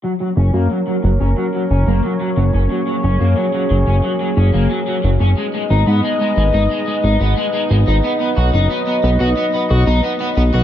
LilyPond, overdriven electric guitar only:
\new Staff \with { instrumentName = "Overdriven electric guitar" } { \time 4/4 \key fis \major \tempo 4 = 90 fis16 fis16 cis'16 ais16 fis16 fis16 fis16 cis'16 fis16 fis16 cis'16 ais16 fis16 fis16 fis16 cis'16 | fis16 fis16 cis'16 ais16 fis16 fis16 fis16 cis'16 fis16 fis16 cis'16 ais16 fis16 fis16 fis16 cis'16 | gis16 gis16 dis'16 b16 gis16 gis16 gis16 dis'16 gis16 gis16 dis'16 b16 gis16 gis16 gis16 dis'16 | b16 b16 fis'16 dis'16 b16 b16 b16 fis'16 b16 b16 fis'16 dis'16 b16 b16 b16 fis'16 | }